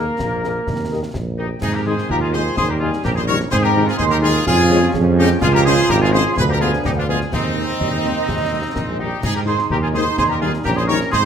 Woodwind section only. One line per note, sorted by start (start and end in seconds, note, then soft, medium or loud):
0.00 1.11 A#4 medium
1.38 1.48 D#4 medium
1.61 1.73 D#4 medium
1.74 1.86 G4 medium
1.87 2.08 G#4 medium
2.11 2.21 G4 medium
2.22 2.33 F4 medium
2.33 2.56 G#4 medium
2.57 2.68 G#4 loud
2.70 2.75 G4 medium
2.80 2.91 F4 medium
3.04 3.10 G4 loud
3.15 3.21 G#4 medium
3.27 3.38 A#4 loud
3.52 3.63 G#4 loud
3.63 3.87 G4 loud
3.87 3.99 F4 medium
3.98 4.04 G#4 loud
4.10 4.16 G4 loud
4.22 4.45 F4 loud
4.46 4.91 F4 loud
5.18 5.29 D#4 loud
5.42 5.53 F4 loud
5.53 5.64 G4 loud
5.65 5.88 G#4 loud
5.90 6.02 G4 loud
6.01 6.12 F4 loud
6.12 6.36 G#4 loud
6.37 6.42 G#4 medium
6.49 6.55 G4 loud
6.61 6.72 F4 loud
6.86 6.91 D#4 loud
6.98 7.03 D4 medium
7.09 7.20 F4 medium
7.33 8.95 C4 medium
9.00 9.22 D#4 medium
9.23 9.28 D#4 medium
9.36 9.41 G4 medium
9.47 9.57 G#4 medium
9.72 9.77 G4 loud
9.82 9.87 F4 medium
9.94 10.05 G#4 medium
10.18 10.23 G#4 loud
10.30 10.35 G4 medium
10.41 10.52 F4 medium
10.65 10.76 G4 loud
10.77 10.89 G#4 loud
10.88 11.10 A#4 loud
11.12 11.17 G#4 loud